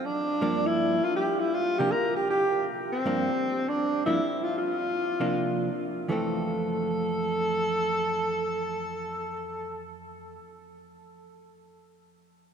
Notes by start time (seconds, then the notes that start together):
0.05 D4
0.41 G2 F3 A#3 D4
0.66 E4
1.04 F4
1.16 G4
1.39 E4
1.54 F4
1.78 C3 F3 A#3 D4 G4
1.91 A#4
2.16 G4
2.30 G4
2.92 C4
3.06 G2 F3 A#3 D4
3.69 D4
4.06 G2 F3 A#3 D4 E4
4.43 F4
4.58 F4
5.20 C3 F3 A#3 D4
6.08 F2 E3 A3 C4 A4